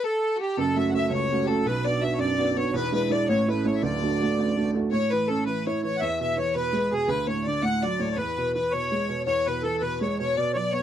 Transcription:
0.04 fiddle A4, accordion A4
0.21 fiddle A4
0.36 fiddle F#4
0.40 fiddle G4, accordion G4
0.57 upright piano F#1 F#2, fiddle A4, accordion A4
0.76 upright piano A3 C#4 F#4, fiddle E5, accordion E5
0.89 upright piano A3 C#4 F#4, accordion F#5
0.95 fiddle E5, accordion E5
1.10 upright piano C#2, fiddle C#5, accordion C#5
1.31 upright piano A3 C#4 F#4
1.45 upright piano A3, accordion G4, fiddle A4
1.49 upright piano C#4 F#4, accordion A4
1.66 upright piano B1 B2, fiddle B4, accordion B4
1.84 upright piano B3 D4 F#4, fiddle D5, accordion D5
2.01 upright piano B3 D4 F#4, fiddle E5, accordion E5
2.13 accordion C#5
2.18 upright piano F#2, accordion D5, fiddle D5
2.38 upright piano B3 D4 F#4
2.53 upright piano B3 D4 F#4, accordion D5
2.57 fiddle C#5, accordion C#5
2.73 upright piano E1 E2, fiddle B4, accordion B4
2.92 upright piano G#3 D4 E4, fiddle B4, accordion B4
3.10 upright piano G#3 D4 E4, fiddle D5, accordion D5
3.28 upright piano A1 A2, fiddle C#5, accordion C#5
3.48 upright piano A3 C#4 E4, fiddle B4, accordion B4
3.65 upright piano A3 C#4 E4, accordion C#5, fiddle C#5
3.75 accordion E5
3.82 upright piano D1 D2, fiddle D5, accordion D5
4.02 upright piano A3 D4 F#4
4.20 upright piano A3 D4 F#4
4.38 upright piano A1
4.56 upright piano A3 D4 F#4
4.75 upright piano A3 D4 F#4
4.91 upright piano A2, fiddle C#5, accordion C#5
5.10 upright piano E3, fiddle B4, accordion B4
5.27 upright piano C#4, accordion A4, fiddle A4
5.45 upright piano E3, accordion B4, fiddle B4
5.66 upright piano E4, accordion C#5, fiddle C#5
5.83 upright piano E3, accordion C#5, fiddle C#5
5.97 accordion E5 F#5
6.02 upright piano E2, fiddle E5
6.20 upright piano B2, accordion E5, fiddle E5
6.37 upright piano E3, accordion C#5, fiddle C#5
6.54 upright piano B2, fiddle B4, accordion B4
6.73 upright piano G#3
6.92 upright piano B2, accordion G#4, fiddle G#4
7.08 upright piano D2, accordion B4, fiddle B4
7.27 upright piano A2, fiddle C#5, accordion C#5
7.45 upright piano D3, fiddle D5, accordion D5
7.63 upright piano A2, fiddle F#5, accordion F#5
7.82 upright piano F#3, accordion D5, fiddle D5
7.99 upright piano A2, accordion C#5
8.11 accordion C#5
8.17 upright piano E2, fiddle B4, accordion B4
8.37 upright piano B2
8.54 upright piano E3, accordion B4, fiddle B4
8.71 upright piano B2, accordion C#5, fiddle C#5
8.92 upright piano G#3
9.09 upright piano B2
9.27 upright piano E2, fiddle C#5, accordion C#5
9.46 upright piano B2, accordion B4, fiddle B4
9.62 upright piano E3, accordion A4, fiddle A4
9.78 upright piano B2, accordion A4 B4
9.83 fiddle B4
10.01 upright piano G#3, accordion C#5, fiddle C#5
10.19 upright piano B2, accordion C#5, fiddle C#5
10.37 upright piano B2, accordion D5, fiddle D5
10.53 upright piano F#3, accordion C#5 D5, fiddle D5
10.71 upright piano B3, fiddle C#5, accordion C#5

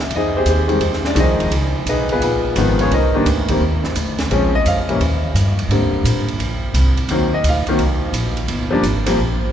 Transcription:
Already playing: upright bass C#2
0.10 upright bass F2, ride
0.16 grand piano D#4 G#4 C5 D#5
0.37 grand piano C4 G4 G#4 C5
0.45 upright bass D#2, hi-hat pedal, ride
0.50 grand piano C4 G4 G#4 C5
0.67 grand piano D#3 G3 G#3 C4, ride
0.80 upright bass F2, ride
0.93 snare
1.04 grand piano D4 D5, muted upright bass stroke, snare
1.15 upright bass C2, grand piano D#3 F3 G#3 D#4, hi-hat pedal, ride
1.20 grand piano D#4 G#4 C5 D#5
1.28 upright bass G#1
1.39 upright bass F1, ride
1.51 upright bass C#2, ride
1.86 upright bass B1, grand piano D#4 G#4 B4 D#5, hi-hat pedal, ride
2.09 grand piano B3 F4 G#4 B4, ride
2.21 upright bass A#1, grand piano B3 F4 G#4 B4, ride
2.56 upright bass G#1, grand piano D#3 F3 G#3 B3, hi-hat pedal, ride
2.79 grand piano C#4 F4 G#4 C#5, ride
2.91 upright bass C2, grand piano A#4 C5 D#5, ride
2.95 grand piano D#4
3.15 grand piano D#3 G3 A#3 D4
3.25 upright bass D2, hi-hat pedal, ride
3.48 grand piano D#3 G3 A#3 C4, kick, ride
3.60 upright bass D#2
3.84 snare
3.95 upright bass D2, hi-hat pedal, ride
4.18 snare, ride
4.31 upright bass A#1, grand piano F3 G#3 C4 C#4, ride
4.55 grand piano D#5
4.66 upright bass F2, grand piano F5, hi-hat pedal, ride
4.77 upright bass C#2
4.89 upright bass A#1, grand piano E3 G3 A#3 C#4, ride
5.00 upright bass D#2, ride
5.34 upright bass G2, hi-hat pedal, ride
5.59 ride
5.69 upright bass G#2, grand piano D3 G3 A#3 C4, ride
5.92 muted upright bass stroke
6.04 upright bass A#2, hi-hat pedal, ride
6.28 ride
6.39 upright bass A#1, ride
6.74 upright bass C2, hi-hat pedal, ride
6.97 ride
7.09 upright bass D#2, grand piano D#3 F#3 A#3 C4, ride
7.34 grand piano D#5
7.44 upright bass D2, hi-hat pedal, ride
7.49 grand piano F5
7.67 grand piano D#3 F#3 A#3 C4, muted upright bass stroke, ride
7.78 upright bass C2, ride
8.13 upright bass A#1, hi-hat pedal, ride
8.37 ride
8.48 upright bass G1, ride
8.71 grand piano F3 G3 A#3 D4
8.83 upright bass G#1, hi-hat pedal, ride
9.06 grand piano F3 G3 A#3 C4, snare, ride
9.18 upright bass A#1

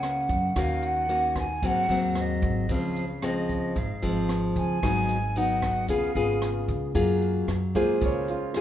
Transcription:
Already playing: upright bass C#2, nylon-string guitar C#3 A#3 C#4, flute F#5
0.03 cross-stick, closed hi-hat
0.29 upright bass F#2, kick, closed hi-hat
0.56 upright bass D#2, nylon-string guitar D#3 A#3 C#4 F#4, flute F5, kick, cross-stick, closed hi-hat
0.82 closed hi-hat
0.87 flute F#5
1.09 nylon-string guitar A#3 C#4 F#4, closed hi-hat
1.36 flute G#5, kick, cross-stick, closed hi-hat
1.63 upright bass G#1, nylon-string guitar G#2 F#3 A#3 C4, flute F#5, kick, closed hi-hat
1.89 upright bass D#2, nylon-string guitar F#3 A#3 C4, closed hi-hat
2.15 flute D#5, cross-stick, closed hi-hat
2.42 upright bass G#1, kick, closed hi-hat
2.69 upright bass C#2, nylon-string guitar C#3 F3 G#3 C4, flute F5, kick, closed hi-hat
2.96 closed hi-hat
3.22 nylon-string guitar F3 G#3 C4, flute D#5, cross-stick, closed hi-hat
3.49 kick, closed hi-hat
3.76 upright bass G#1, nylon-string guitar G#2, flute F5, kick, closed hi-hat
4.03 upright bass G#1, nylon-string guitar F3 G#3 C4, closed hi-hat
4.29 cross-stick, closed hi-hat
4.56 upright bass C#2, flute G#5, kick, closed hi-hat
4.83 upright bass G#1, nylon-string guitar G#2 F#3 B3 D#4, kick, cross-stick, closed hi-hat
5.09 closed hi-hat
5.36 nylon-string guitar F#3 B3 D#4, flute F#5, closed hi-hat
5.62 kick, cross-stick, closed hi-hat
5.88 upright bass C#2, nylon-string guitar C#3 B3 F4 G#4, flute F5, kick, closed hi-hat
6.15 upright bass G#1, nylon-string guitar B3 F4 G#4, closed hi-hat
6.42 cross-stick, closed hi-hat
6.68 upright bass C#2, kick, closed hi-hat
6.95 upright bass F#2, nylon-string guitar F#3 A#3 F4 G#4, kick, closed hi-hat
7.22 closed hi-hat
7.48 upright bass F#2, cross-stick, closed hi-hat
7.75 grand piano G#3 A#3 F4 C5, nylon-string guitar A#3 F4 G#4, kick, closed hi-hat
8.01 upright bass C#2, nylon-string guitar C#3, grand piano C#5, kick, closed hi-hat
8.28 grand piano F4, closed hi-hat
8.54 nylon-string guitar A#3 F4 G#4, cross-stick, closed hi-hat

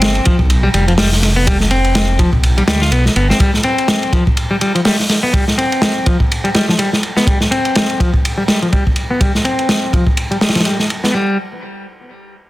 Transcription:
Already playing: detuned saw bass G1, clean electric guitar C4
0.02 snare, ride
0.15 ride
0.25 clean electric guitar F3, kick, ride
0.39 detuned saw bass B1, kick
0.50 ride
0.63 clean electric guitar G3
0.74 detuned saw bass F1, clean electric guitar G3, ride
0.88 clean electric guitar F3, ride
0.98 clean electric guitar G3, snare, open hi-hat
1.12 snare
1.22 snare, ride
1.36 clean electric guitar B3
1.47 clean electric guitar G3, kick, ride
1.60 snare
1.71 clean electric guitar C4, ride
1.84 ride
1.95 snare, ride
2.19 clean electric guitar F3, kick, ride
2.33 detuned saw bass B1, kick
2.43 ride
2.58 clean electric guitar G3, ride
2.68 detuned saw bass D2, clean electric guitar G3, snare, ride
2.82 clean electric guitar F4, snare
2.92 detuned saw bass B1, clean electric guitar B3, ride
3.06 snare
3.16 detuned saw bass G1, clean electric guitar B3, ride
3.30 clean electric guitar C4, snare
3.40 clean electric guitar G3, kick, ride
3.54 snare
3.63 clean electric guitar C4, ride
3.78 ride
3.88 snare, ride
4.03 ride
4.13 clean electric guitar F3, kick, ride
4.27 kick
4.37 ride
4.51 clean electric guitar G3
4.61 clean electric guitar G3, ride
4.75 clean electric guitar F3, ride
4.85 clean electric guitar G3, snare, open hi-hat
4.99 snare
5.09 snare, ride
5.23 clean electric guitar B3
5.33 clean electric guitar G3, kick, ride
5.48 snare
5.58 clean electric guitar C4, ride
5.72 ride
5.82 snare, ride
6.06 clean electric guitar F3, kick, ride
6.20 kick
6.32 ride
6.44 clean electric guitar G3, ride
6.54 clean electric guitar G3, snare, ride
6.68 clean electric guitar F3, snare
6.79 clean electric guitar G3, ride
6.93 snare
7.03 ride
7.17 clean electric guitar B3, snare
7.27 clean electric guitar G3, kick, ride
7.41 snare
7.51 clean electric guitar C4, ride
7.65 ride
7.75 snare, ride
7.90 ride
8.00 clean electric guitar F3, kick, ride
8.14 kick
8.25 ride
8.38 clean electric guitar G3
8.48 clean electric guitar G3, snare, ride
8.62 clean electric guitar F3, ride
8.72 clean electric guitar G3, kick, ride
8.87 kick
8.96 ride
9.10 clean electric guitar B3
9.21 clean electric guitar G3, kick, ride
9.35 snare
9.45 clean electric guitar C4, ride
9.59 ride
9.69 snare, ride
9.93 clean electric guitar F3, kick, ride
10.07 kick
10.17 ride
10.31 clean electric guitar G3, ride
10.41 clean electric guitar G3, snare, ride
10.49 snare, ride
10.55 clean electric guitar F3, snare, ride
10.60 snare, ride
10.65 clean electric guitar G3, ride
10.79 snare
10.90 ride
11.04 clean electric guitar B3, snare
11.14 clean electric guitar G3

